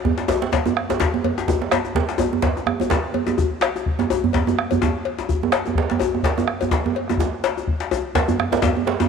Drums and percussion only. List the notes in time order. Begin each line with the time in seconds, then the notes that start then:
0.05 bombo low, djembe tone
0.18 djembe slap
0.28 cowbell, djembe slap, djembe tone, djembe bass
0.42 djembe slap
0.52 bombo low, cowbell, djembe slap, djembe tone
0.66 djembe slap, djembe tone
0.77 bombo rim
0.90 bombo rim, cowbell, djembe slap, djembe bass
1.00 bombo low, djembe slap, djembe tone
1.14 djembe tone
1.24 cowbell, djembe tone
1.38 bombo rim, djembe slap, djembe tone
1.48 bombo low, djembe slap, djembe bass
1.62 djembe slap
1.71 bombo rim, cowbell, djembe slap, djembe tone
1.85 bombo rim, djembe slap, djembe tone
1.95 bombo low, djembe slap
2.09 djembe slap
2.18 bombo rim, cowbell, djembe tone, djembe bass
2.33 djembe tone
2.42 bombo low, cowbell, djembe slap
2.57 djembe slap, djembe tone
2.66 bombo rim, djembe tone
2.80 bombo rim, cowbell, djembe tone, djembe bass
2.90 bombo low, djembe slap, djembe tone
3.04 djembe slap
3.14 cowbell, djembe tone
3.27 djembe slap, djembe tone
3.38 bombo rim, bombo low, djembe bass
3.61 bombo rim, cowbell, djembe slap
3.76 bombo rim, djembe tone
3.86 bombo low
3.99 djembe slap, djembe tone
4.10 cowbell, djembe tone, djembe bass
4.24 djembe bass
4.33 bombo low, cowbell, djembe slap, djembe tone
4.47 djembe slap, djembe tone
4.59 bombo rim
4.71 bombo rim, cowbell, djembe bass
4.82 bombo low, djembe slap, djembe tone
5.05 bombo rim, cowbell
5.19 bombo rim, djembe slap, djembe tone
5.29 bombo rim, bombo low, djembe bass
5.43 djembe tone
5.52 bombo rim, cowbell, djembe slap
5.66 bombo rim, djembe tone
5.67 djembe tone
5.75 bombo low, djembe slap
5.90 djembe slap, djembe tone
6.00 cowbell, djembe tone, djembe bass
6.15 djembe tone
6.23 bombo low, cowbell, djembe slap
6.38 djembe slap, djembe tone
6.48 bombo rim
6.61 bombo rim, cowbell, djembe tone, djembe bass
6.71 bombo low, djembe slap, djembe tone
6.86 djembe tone
6.95 bombo rim, cowbell
7.08 bombo rim, djembe slap, djembe tone
7.17 bombo rim, bombo low, djembe slap, djembe bass
7.44 cowbell, djembe slap
7.56 bombo rim, djembe tone
7.67 bombo low
7.80 djembe slap
7.91 cowbell, djembe tone, djembe bass
8.15 bombo low, cowbell, djembe slap
8.28 djembe slap, djembe tone, djembe bass
8.39 bombo rim, djembe tone
8.52 bombo rim, cowbell, djembe slap, djembe bass
8.62 bombo low, djembe slap, djembe tone, djembe bass
8.77 djembe tone
8.87 bombo rim, cowbell, djembe slap
9.00 bombo rim, djembe slap, djembe tone, djembe bass